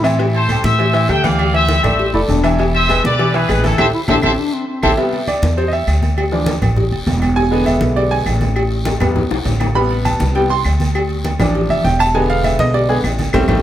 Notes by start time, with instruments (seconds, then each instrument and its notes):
Already playing: upright bass A2
0.04 grand piano E3 E4 E5, bass clarinet C4, cowbell, low agogo, short guiro, claves
0.19 grand piano E3 E4 E5, cowbell, high conga, low agogo
0.34 trumpet section A4 C5, high conga, low agogo
0.49 grand piano G3 G4 A4, cowbell, high conga, low timbale, low agogo, short guiro, claves
0.64 upright bass A2, trumpet section C5 E5, high conga, short guiro
0.79 grand piano E3 E4 E5, cowbell, high conga, low agogo, long guiro
0.94 grand piano E3 E4 E5, cowbell, high conga, low agogo
1.08 upright bass D2, grand piano G3 G4 A4, trumpet section E5 G5, cowbell, high conga, low timbale, low agogo, short guiro, claves
1.23 grand piano E3 G4 G5, trumpet section D5 F5, high conga, low agogo, short guiro
1.38 cowbell, high conga, low agogo, long guiro, claves
1.54 grand piano E3 E4 E5, trumpet section C5 E5, cowbell, high conga
1.69 cowbell, high conga, low timbale, low agogo, short guiro
1.83 upright bass A1, grand piano A3 A4 D5, trumpet section C5 E5, cowbell, high conga, low conga, low agogo, short guiro, claves
1.99 cowbell, high conga, long guiro
2.14 upright bass F1, grand piano A3 A4 D5, bass clarinet E4, high conga, low agogo
2.28 upright bass E1, bass clarinet D4, cowbell, high conga, low timbale, low agogo, short guiro
2.44 grand piano E3 E4 E5, cowbell, low agogo, short guiro, claves
2.59 grand piano E3 E4 E5, cowbell, high conga, low agogo, long guiro
2.74 trumpet section C5 E5, high conga, low agogo
2.89 grand piano G#3 G#4 B4, cowbell, high conga, low timbale, low agogo, short guiro, claves
3.04 upright bass B1, trumpet section B4 D5, high conga, short guiro
3.19 grand piano E3 E4 E5, cowbell, high conga, low agogo, long guiro
3.34 grand piano E3 E4 E5, trumpet section G#4 B4, cowbell, high conga, low agogo
3.49 upright bass A1, grand piano G#3 G#4 B4, cowbell, high conga, low timbale, low agogo, short guiro, claves
3.64 grand piano E3 E4 E5, trumpet section E4 A4, high conga, low agogo, short guiro
3.78 upright bass A1, grand piano E4 G4 A4, trumpet section A4 C5 E5, cowbell, high conga, high timbale, long guiro, claves
3.94 bass clarinet E4
4.08 upright bass A1, bass clarinet D4, grand piano E4 G4 A4, trumpet section A4 C5 E5, cowbell, high conga, high timbale, long guiro, claves
4.22 upright bass A1, bass clarinet C4, grand piano E4 G4 A4, trumpet section A4 C5 E5, cowbell, high conga, high timbale, long guiro, claves
4.39 bass clarinet D4
4.53 bass clarinet C4
4.68 bass clarinet C4
4.83 upright bass A1, grand piano E4 G4 A4, trumpet section A4 C5 E5, cowbell, high conga, high timbale, long guiro, claves
4.97 grand piano C3 G3 B3 E5, cowbell, high conga, low agogo, long guiro
5.13 high conga, low agogo
5.27 grand piano D5, cowbell, high conga, low timbale, low agogo, short guiro, claves
5.42 upright bass E2, high conga, short guiro
5.57 grand piano C5, cowbell, high conga, low agogo, long guiro
5.68 grand piano D#5
5.72 grand piano E5, cowbell, high conga, low agogo
5.87 upright bass D2, cowbell, high conga, low timbale, low agogo, short guiro, claves
6.02 high conga, low agogo, short guiro
6.17 cowbell, high conga, low agogo, long guiro, claves
6.32 grand piano E3 F3 D4, cowbell, high conga
6.46 cowbell, high conga, low timbale, low agogo, short guiro
6.62 upright bass A1, cowbell, high conga, low conga, low agogo, short guiro, claves
6.76 cowbell, high conga, low conga, long guiro
6.91 upright bass F1, high conga, low agogo
7.07 upright bass E1, cowbell, high conga, low timbale, low agogo, short guiro
7.22 cowbell, high conga, low agogo, short guiro, claves
7.36 grand piano G#5, cowbell, high conga, low agogo, long guiro
7.51 grand piano D3 G#3 B3, high conga, low agogo
7.66 grand piano E5, cowbell, high conga, low timbale, low agogo, short guiro, claves
7.81 upright bass B1, high conga, short guiro
7.96 grand piano D5, cowbell, high conga, low agogo, long guiro
8.11 grand piano G#5, cowbell, high conga, low agogo
8.26 upright bass A1, cowbell, high conga, low timbale, low agogo, short guiro, claves
8.41 high conga, low agogo, short guiro
8.56 cowbell, high conga, low agogo, long guiro, claves
8.71 cowbell, high conga
8.85 cowbell, high bongo, high conga, low timbale, low agogo, short guiro
9.00 upright bass E2, grand piano C3 G3 B3, cowbell, high bongo, high conga, low conga, low agogo, short guiro, claves
9.16 cowbell, low bongo, high conga, low conga, long guiro
9.30 upright bass B1, low bongo, high conga, low agogo
9.45 upright bass A1, cowbell, low bongo, high conga, low timbale, low agogo, short guiro
9.60 cowbell, low bongo, high conga, low agogo, short guiro, claves
9.75 grand piano C3 G3 B3 B5, cowbell, high conga, low agogo, long guiro
9.90 high conga, low agogo
10.05 grand piano A5, cowbell, high conga, low timbale, low agogo, short guiro, claves
10.20 upright bass C2, high conga, short guiro
10.35 grand piano C3 G3 B3 G5, cowbell, high conga, low agogo, long guiro
10.50 grand piano C6, cowbell, high conga, low agogo
10.65 upright bass D2, cowbell, high conga, low timbale, low agogo, short guiro, claves
10.80 high conga, low agogo, short guiro
10.95 cowbell, high conga, low agogo, long guiro, claves
11.09 cowbell, high conga
11.25 cowbell, high conga, low timbale, low agogo, short guiro
11.39 upright bass A1, grand piano E3 F3 D4, cowbell, high conga, low conga, low agogo, short guiro, claves
11.54 cowbell, high conga
11.69 upright bass F1, grand piano E5, high conga, low agogo
11.84 upright bass E1, grand piano G5, cowbell, high conga, low timbale, low agogo, short guiro
11.99 grand piano A5, cowbell, low agogo, short guiro, claves
12.15 grand piano D3 G#3 B3 G#5, cowbell, high conga, low agogo, long guiro
12.30 grand piano F5, high conga, low agogo
12.44 grand piano E5, cowbell, high conga, low timbale, low agogo, short guiro, claves
12.59 upright bass B1, grand piano D#5, high conga, short guiro
12.74 grand piano D5, cowbell, high conga, low agogo, long guiro
12.89 grand piano D3 G#3 B3 G#4, cowbell, high conga, low agogo
13.04 upright bass A1, cowbell, high conga, low timbale, low agogo, short guiro, claves
13.18 high conga, low agogo, short guiro
13.33 upright bass A1, grand piano G3 A3 C4, cowbell, low conga, high timbale, long guiro, claves
13.48 upright bass A1, grand piano G3 A3 C4, cowbell, low conga, high timbale, long guiro, claves